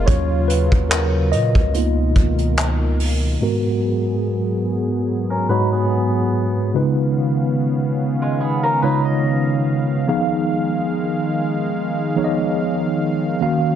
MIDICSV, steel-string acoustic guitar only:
0, 0, Header, 1, 2, 480
1, 0, Start_track
1, 0, Tempo, 833333
1, 43, Time_signature, 4, 2, 24, 8
1, 7922, End_track
2, 0, Start_track
2, 0, Title_t, "Steel-string acoustic guitar"
2, 0, Program_c, 0, 25
2, 3053, Note_on_c, 0, 70, 68
2, 3056, Note_on_c, 0, 61, 61
2, 3158, Note_off_c, 0, 70, 0
2, 3159, Note_off_c, 0, 61, 0
2, 3163, Note_on_c, 0, 71, 75
2, 3167, Note_on_c, 0, 63, 65
2, 3286, Note_off_c, 0, 71, 0
2, 3288, Note_off_c, 0, 63, 0
2, 3294, Note_on_c, 0, 68, 69
2, 3297, Note_on_c, 0, 59, 64
2, 3860, Note_off_c, 0, 68, 0
2, 3862, Note_off_c, 0, 59, 0
2, 4733, Note_on_c, 0, 65, 66
2, 4736, Note_on_c, 0, 56, 62
2, 4838, Note_off_c, 0, 65, 0
2, 4839, Note_off_c, 0, 56, 0
2, 4842, Note_on_c, 0, 68, 75
2, 4846, Note_on_c, 0, 59, 61
2, 4966, Note_off_c, 0, 68, 0
2, 4967, Note_off_c, 0, 59, 0
2, 4973, Note_on_c, 0, 70, 81
2, 4976, Note_on_c, 0, 61, 67
2, 5078, Note_off_c, 0, 70, 0
2, 5079, Note_off_c, 0, 61, 0
2, 5082, Note_on_c, 0, 71, 75
2, 5086, Note_on_c, 0, 63, 66
2, 5206, Note_off_c, 0, 71, 0
2, 5207, Note_off_c, 0, 63, 0
2, 5212, Note_on_c, 0, 75, 73
2, 5780, Note_off_c, 0, 75, 0
2, 7922, End_track
0, 0, End_of_file